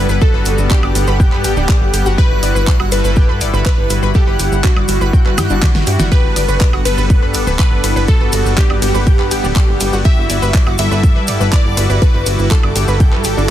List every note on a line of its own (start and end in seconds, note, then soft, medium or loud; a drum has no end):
0.00 0.19 G3 medium
0.00 6.08 G3 medium
0.00 0.19 B3 medium
0.00 2.14 D4 medium
0.00 0.19 E4 medium
0.00 2.14 A4 medium
0.00 0.17 B4 medium
0.00 2.14 B4 medium
0.00 2.14 F#5 medium
0.00 6.13 F#6 medium
0.09 0.19 G1 medium
0.09 0.15 B4 loud
0.09 maracas medium
0.21 0.92 G3 loud
0.21 0.92 B3 medium
0.21 0.92 F#4 loud
0.21 0.66 A4 medium
0.21 0.28 A4 medium
0.21 kick loud
0.21 maracas soft
0.34 0.44 G1 medium
0.34 0.40 B4 medium
0.45 0.56 G1 loud
0.45 open hi-hat loud
0.45 maracas medium
0.58 0.68 G1 medium
0.58 maracas soft
0.70 0.77 D4 medium
0.70 2.08 G4 loud
0.70 kick medium
0.70 clap loud
0.70 maracas soft
0.83 0.93 G1 medium
0.83 0.89 D5 medium
0.83 high woodblock medium
0.95 1.05 G1 loud
0.95 1.42 G3 medium
0.95 1.42 B3 medium
0.95 1.42 F#5 medium
0.95 open hi-hat loud
0.95 maracas medium
1.07 1.34 G1 medium
1.07 1.14 B4 loud
1.07 maracas medium
1.20 1.29 G5 medium
1.20 kick loud
1.20 maracas soft
1.32 1.46 G2 medium
1.32 1.38 B4 medium
1.32 clap soft
1.44 1.54 G1 loud
1.44 2.15 G3 medium
1.44 2.15 B3 medium
1.44 1.54 G4 loud
1.44 2.15 G4 loud
1.44 open hi-hat loud
1.44 maracas medium
1.57 1.67 D1 medium
1.57 1.61 D4 medium
1.57 maracas medium
1.69 1.75 D5 medium
1.69 kick loud
1.69 clap loud
1.69 maracas soft
1.81 1.91 G1 medium
1.94 2.04 G1 loud
1.94 2.00 G4 medium
1.94 open hi-hat loud
1.94 maracas medium
2.06 2.16 G1 medium
2.06 2.12 F#4 loud
2.06 maracas medium
2.18 2.89 G3 medium
2.18 6.08 E4 medium
2.18 2.89 E4 medium
2.18 4.13 F#4 medium
2.18 2.89 F#4 medium
2.18 2.28 G4 loud
2.18 2.82 B4 loud
2.18 kick loud
2.18 maracas soft
2.31 2.40 G1 medium
2.43 2.53 G1 loud
2.43 2.49 D5 medium
2.43 open hi-hat loud
2.43 maracas medium
2.55 2.65 G1 medium
2.55 2.61 B4 loud
2.55 maracas soft
2.67 2.74 D5 medium
2.67 kick loud
2.67 clap loud
2.67 maracas soft
2.80 2.90 G1 medium
2.80 2.89 F#4 loud
2.80 high woodblock medium
2.92 3.02 G1 loud
2.92 3.87 G3 medium
2.92 3.87 E4 medium
2.92 3.87 A4 loud
2.92 3.01 B4 medium
2.92 3.56 B4 loud
2.92 open hi-hat loud
2.92 maracas medium
3.04 3.31 G1 medium
3.04 3.11 B4 loud
3.04 maracas medium
3.16 3.26 G4 loud
3.16 kick loud
3.16 maracas soft
3.29 3.43 G2 medium
3.29 3.35 B4 medium
3.41 3.51 G1 loud
3.41 3.47 D5 medium
3.41 open hi-hat loud
3.41 maracas medium
3.54 3.63 G1 medium
3.54 3.60 B4 loud
3.54 maracas medium
3.66 3.72 B4 medium
3.66 4.10 B4 medium
3.66 kick loud
3.66 clap loud
3.66 maracas soft
3.78 3.88 G1 medium
3.90 4.00 G1 loud
3.90 4.12 G3 medium
3.90 4.12 E4 medium
3.90 4.12 F#4 medium
3.90 4.00 B4 medium
3.90 open hi-hat loud
3.90 maracas medium
4.03 4.12 G1 medium
4.03 4.09 B4 loud
4.03 maracas soft
4.14 4.86 G3 loud
4.14 4.86 E4 medium
4.14 4.59 G4 loud
4.14 4.21 A4 medium
4.14 4.86 F#5 loud
4.14 kick loud
4.14 maracas soft
4.27 4.37 G1 medium
4.27 4.33 B4 medium
4.39 4.49 G1 loud
4.39 open hi-hat loud
4.39 maracas medium
4.52 4.62 G1 medium
4.52 maracas soft
4.64 4.70 D4 medium
4.64 6.02 F#4 loud
4.64 kick loud
4.64 clap loud
4.64 maracas soft
4.76 4.86 G1 medium
4.76 4.83 D5 medium
4.76 high woodblock medium
4.88 4.99 G1 loud
4.88 5.35 G3 medium
4.88 5.35 E4 medium
4.88 5.35 F#4 medium
4.88 open hi-hat loud
4.88 maracas medium
5.01 5.11 G1 medium
5.01 5.07 B4 loud
5.01 maracas soft
5.13 5.23 G5 medium
5.13 kick loud
5.13 maracas soft
5.26 5.39 G1 medium
5.26 5.32 B4 medium
5.26 clap soft
5.38 5.48 G2 loud
5.38 5.47 G4 loud
5.38 snare medium
5.38 open hi-hat loud
5.38 high woodblock medium
5.38 maracas medium
5.50 5.60 G1 medium
5.50 5.84 G3 medium
5.50 5.54 D4 medium
5.50 5.84 E4 medium
5.50 5.84 F#4 loud
5.50 maracas medium
5.62 5.69 D5 medium
5.62 kick loud
5.62 snare medium
5.62 clap loud
5.62 maracas soft
5.75 5.85 G1 medium
5.75 snare medium
5.87 5.97 G2 loud
5.87 6.09 G3 medium
5.87 6.09 E4 medium
5.87 6.09 F#4 loud
5.87 5.93 G4 medium
5.87 open hi-hat loud
5.87 maracas medium
5.99 6.09 G1 medium
5.99 6.06 F#4 loud
5.99 snare medium
5.99 maracas medium
6.12 6.83 G3 medium
6.12 13.51 G3 medium
6.12 6.83 B3 medium
6.12 10.01 D4 medium
6.12 6.83 F#4 medium
6.12 6.21 G4 loud
6.12 10.01 A4 medium
6.12 6.76 B4 loud
6.12 10.01 B4 medium
6.12 10.01 F#5 medium
6.12 13.51 D6 medium
6.12 kick loud
6.12 ride medium
6.12 maracas soft
6.24 6.34 G1 medium
6.36 6.46 G1 loud
6.36 6.43 D5 medium
6.36 open hi-hat loud
6.36 ride medium
6.36 maracas medium
6.48 6.58 G1 medium
6.48 6.55 B4 loud
6.48 maracas medium
6.61 6.67 D5 medium
6.61 kick loud
6.61 clap loud
6.61 ride medium
6.61 maracas soft
6.73 6.83 G1 medium
6.73 6.82 F#4 loud
6.73 high woodblock medium
6.85 6.95 G1 loud
6.85 7.81 G3 medium
6.85 7.81 B3 medium
6.85 7.81 A4 loud
6.85 6.95 B4 medium
6.85 7.49 B4 loud
6.85 open hi-hat loud
6.85 ride medium
6.85 maracas medium
6.98 7.24 G1 medium
6.98 7.04 B4 loud
6.98 maracas medium
7.10 kick loud
7.10 ride medium
7.10 maracas soft
7.22 7.36 G2 medium
7.22 7.29 B4 medium
7.34 7.45 G1 loud
7.34 7.41 D5 medium
7.34 open hi-hat loud
7.34 ride medium
7.34 maracas medium
7.47 7.57 D1 medium
7.47 7.53 B4 loud
7.47 maracas medium
7.59 7.65 B4 medium
7.59 8.03 B4 medium
7.59 kick loud
7.59 clap loud
7.59 ride medium
7.59 maracas soft
7.72 7.81 G1 medium
7.84 7.94 G1 loud
7.84 8.05 G3 medium
7.84 8.05 B3 medium
7.84 8.05 E4 medium
7.84 7.93 B4 medium
7.84 open hi-hat loud
7.84 ride medium
7.84 maracas medium
7.96 8.06 G1 medium
7.96 8.02 B4 loud
7.96 maracas medium
8.08 8.79 G3 loud
8.08 8.79 B3 medium
8.08 8.79 F#4 loud
8.08 8.15 A4 medium
8.08 8.53 A4 medium
8.08 kick loud
8.08 ride medium
8.08 maracas soft
8.21 8.31 G1 medium
8.21 8.27 B4 medium
8.32 8.43 G1 loud
8.32 open hi-hat loud
8.32 ride medium
8.32 maracas loud
8.45 8.55 G1 medium
8.45 maracas medium
8.57 8.64 D4 medium
8.57 9.95 G4 loud
8.57 kick loud
8.57 clap loud
8.57 maracas soft
8.70 8.80 G1 medium
8.70 8.76 D5 medium
8.70 high woodblock medium
8.82 8.92 G1 loud
8.82 9.28 G3 medium
8.82 9.28 B3 medium
8.82 8.92 G4 loud
8.82 9.28 F#5 medium
8.82 open hi-hat loud
8.82 ride medium
8.82 maracas loud
8.95 9.21 G1 medium
8.95 9.01 B4 loud
8.95 maracas medium
9.07 9.16 G5 medium
9.07 kick loud
9.07 ride medium
9.07 maracas soft
9.19 9.33 G2 medium
9.19 9.25 B4 medium
9.19 clap soft
9.31 9.41 G1 loud
9.31 10.02 G3 loud
9.31 10.02 B3 medium
9.31 9.41 G4 loud
9.31 10.02 G4 loud
9.31 open hi-hat loud
9.31 ride medium
9.31 maracas medium
9.44 9.53 D1 medium
9.44 9.47 D4 medium
9.44 maracas medium
9.56 9.62 D5 medium
9.56 kick loud
9.56 clap loud
9.56 ride medium
9.56 maracas soft
9.68 9.78 G1 medium
9.80 9.90 G1 loud
9.80 9.87 G4 medium
9.80 open hi-hat loud
9.80 ride medium
9.80 maracas loud
9.93 10.03 G1 medium
9.93 9.99 F#4 loud
9.93 maracas medium
10.05 10.76 G3 medium
10.05 10.76 E4 medium
10.05 13.51 E4 medium
10.05 10.76 F#4 medium
10.05 10.15 G4 loud
10.05 10.69 E5 loud
10.05 13.51 F#5 medium
10.05 kick loud
10.05 ride medium
10.05 maracas soft
10.17 10.27 G1 medium
10.30 10.40 G1 medium
10.30 10.36 D5 medium
10.30 open hi-hat loud
10.30 ride medium
10.30 maracas loud
10.42 10.52 G1 medium
10.42 10.48 B4 loud
10.42 maracas medium
10.54 10.61 D5 medium
10.54 kick loud
10.54 clap loud
10.54 ride medium
10.54 maracas soft
10.67 10.76 G1 medium
10.67 10.76 F#4 loud
10.67 high woodblock medium
10.78 10.89 G1 loud
10.78 11.74 G3 medium
10.78 11.74 E4 medium
10.78 11.74 A4 loud
10.78 10.88 B4 medium
10.78 11.43 E5 loud
10.78 open hi-hat loud
10.78 ride medium
10.78 maracas loud
10.91 11.17 G1 medium
10.91 10.97 B4 loud
10.91 maracas medium
11.03 kick loud
11.03 ride medium
11.03 maracas soft
11.16 11.29 G2 medium
11.16 11.22 B4 medium
11.28 11.38 G1 loud
11.28 11.34 D5 medium
11.28 open hi-hat loud
11.28 ride medium
11.28 maracas loud
11.40 11.50 G1 medium
11.40 11.47 B4 loud
11.40 maracas medium
11.52 11.59 B4 medium
11.52 11.97 D5 loud
11.52 kick loud
11.52 clap loud
11.52 ride medium
11.52 maracas soft
11.65 11.75 G1 medium
11.77 11.87 G1 loud
11.77 11.99 G3 medium
11.77 11.99 E4 medium
11.77 11.99 F#4 medium
11.77 11.87 B4 medium
11.77 open hi-hat loud
11.77 ride medium
11.77 maracas medium
11.90 11.99 G1 loud
11.90 11.96 B4 loud
11.90 maracas medium
12.02 12.73 G3 loud
12.02 12.73 E4 medium
12.02 12.73 F#4 loud
12.02 12.08 A4 medium
12.02 12.46 B4 medium
12.02 kick loud
12.02 ride medium
12.02 maracas soft
12.14 12.24 G1 medium
12.14 12.20 B4 medium
12.26 12.36 G1 loud
12.26 open hi-hat loud
12.26 ride medium
12.26 maracas loud
12.39 12.49 G1 medium
12.39 maracas medium
12.51 12.57 D4 medium
12.51 13.51 A4 loud
12.51 kick loud
12.51 clap loud
12.51 ride medium
12.51 maracas soft
12.63 12.73 G1 medium
12.63 12.70 D5 medium
12.63 high woodblock medium
12.76 12.86 G1 loud
12.76 13.22 G3 medium
12.76 13.22 E4 medium
12.76 13.22 F#4 medium
12.76 12.85 G4 loud
12.76 open hi-hat loud
12.76 ride medium
12.76 maracas medium
12.88 13.14 G1 medium
12.88 12.94 B4 loud
12.88 maracas medium
13.00 13.10 G5 medium
13.00 kick loud
13.00 ride medium
13.00 maracas soft
13.13 13.26 G2 medium
13.13 13.19 B4 medium
13.13 clap soft
13.24 13.35 G1 loud
13.24 13.34 G4 loud
13.24 open hi-hat loud
13.24 ride medium
13.24 maracas loud
13.37 13.47 G1 medium
13.37 13.51 G3 medium
13.37 13.41 D4 medium
13.37 13.51 E4 medium
13.37 13.51 F#4 loud
13.37 maracas medium